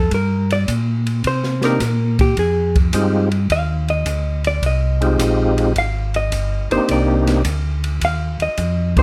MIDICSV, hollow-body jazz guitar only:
0, 0, Header, 1, 2, 480
1, 0, Start_track
1, 0, Key_signature, -3, "minor"
1, 0, Tempo, 564440
1, 99, Time_signature, 4, 2, 24, 8
1, 7678, End_track
2, 0, Start_track
2, 0, Title_t, "Hollow-body jazz guitar"
2, 0, Program_c, 0, 26
2, 0, Note_on_c, 0, 69, 82
2, 102, Note_off_c, 0, 69, 0
2, 123, Note_on_c, 0, 70, 76
2, 430, Note_off_c, 0, 70, 0
2, 447, Note_on_c, 0, 74, 107
2, 532, Note_off_c, 0, 74, 0
2, 1082, Note_on_c, 0, 72, 71
2, 1390, Note_off_c, 0, 72, 0
2, 1405, Note_on_c, 0, 70, 84
2, 1843, Note_off_c, 0, 70, 0
2, 1878, Note_on_c, 0, 67, 81
2, 2020, Note_off_c, 0, 67, 0
2, 2033, Note_on_c, 0, 68, 72
2, 2345, Note_off_c, 0, 68, 0
2, 2993, Note_on_c, 0, 77, 89
2, 3305, Note_off_c, 0, 77, 0
2, 3317, Note_on_c, 0, 75, 85
2, 3759, Note_off_c, 0, 75, 0
2, 3803, Note_on_c, 0, 74, 89
2, 3943, Note_off_c, 0, 74, 0
2, 3966, Note_on_c, 0, 75, 71
2, 4271, Note_off_c, 0, 75, 0
2, 4919, Note_on_c, 0, 77, 83
2, 5228, Note_off_c, 0, 77, 0
2, 5241, Note_on_c, 0, 75, 89
2, 5681, Note_off_c, 0, 75, 0
2, 5715, Note_on_c, 0, 72, 91
2, 5859, Note_off_c, 0, 72, 0
2, 5879, Note_on_c, 0, 74, 86
2, 6188, Note_off_c, 0, 74, 0
2, 6844, Note_on_c, 0, 77, 100
2, 7151, Note_off_c, 0, 77, 0
2, 7163, Note_on_c, 0, 75, 85
2, 7603, Note_off_c, 0, 75, 0
2, 7643, Note_on_c, 0, 72, 87
2, 7678, Note_off_c, 0, 72, 0
2, 7678, End_track
0, 0, End_of_file